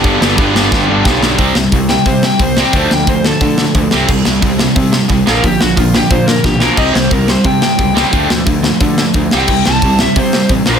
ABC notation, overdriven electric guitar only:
X:1
M:4/4
L:1/8
Q:1/4=178
K:Gmix
V:1 name="Overdriven electric guitar"
z8 | [K:Dm] z3 g c g c g | c g c A4- A- | A z6 B |
G ^F =F G c B G B | _e c B c g g3- | g z6 g- | g a2 e c2 z c |]